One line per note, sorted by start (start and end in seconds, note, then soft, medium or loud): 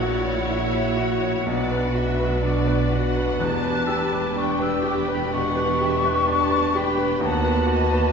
0.00 1.44 A#1 medium
0.00 1.45 A#2 medium
0.00 1.48 E4 medium
0.00 1.45 F#4 medium
0.00 0.41 F#4 medium
0.00 0.16 C#5 soft
0.00 1.45 C#5 medium
0.00 0.50 D5 medium
0.00 2.92 F#5 medium
0.25 0.65 C#5 soft
0.49 0.89 E4 soft
0.49 1.00 E5 medium
0.72 1.13 C#5 medium
0.97 1.38 F#4 soft
0.97 1.49 C#5 soft
1.22 1.47 C#5 soft
1.46 3.36 B1 medium
1.46 3.41 B1 medium
1.46 3.41 B2 medium
1.46 7.21 D4 medium
1.46 3.38 F#4 medium
1.46 7.21 B4 medium
1.46 1.97 D5 medium
1.71 2.11 B4 soft
1.95 2.35 F#4 soft
1.95 2.45 E5 medium
2.20 2.59 B4 medium
2.42 2.82 D4 soft
2.42 2.91 D5 medium
2.68 3.07 B4 medium
2.92 3.32 F#4 medium
2.92 3.40 F#5 medium
3.17 3.41 B4 medium
3.40 7.21 E1 medium
3.40 5.31 E2 medium
3.40 7.21 E2 medium
3.40 7.21 G4 medium
3.40 4.38 A5 medium
3.40 3.88 F#6 medium
3.64 4.04 B4 soft
3.86 4.28 G4 medium
3.86 4.12 E6 medium
4.12 4.52 B4 medium
4.12 4.39 D6 medium
4.35 4.76 D4 soft
4.35 4.63 C#6 medium
4.39 5.36 G5 medium
4.60 5.00 B4 soft
4.60 4.89 E6 medium
4.83 5.24 G4 medium
4.88 5.10 D6 medium
5.08 5.48 B4 soft
5.08 5.32 B5 medium
5.33 5.73 B2 soft
5.33 5.84 F#5 medium
5.33 6.78 C#6 medium
5.55 5.96 B4 medium
5.81 6.20 G4 soft
5.81 6.31 E5 medium
6.05 6.44 B4 medium
6.27 6.67 D4 medium
6.27 6.77 A5 medium
6.50 6.90 B4 medium
6.75 7.14 G4 medium
6.75 7.25 G5 medium
6.75 7.23 B5 medium
6.98 7.23 B4 medium
7.21 8.12 D#2 medium
7.21 8.12 B4 medium
7.21 8.12 A5 medium
7.25 8.12 D#2 medium
7.25 8.12 B3 medium
7.25 8.12 F#4 medium
7.25 7.72 F#5 medium
7.44 7.84 B4 soft
7.67 8.07 F#4 medium
7.72 8.12 D#5 medium
7.93 8.12 B4 medium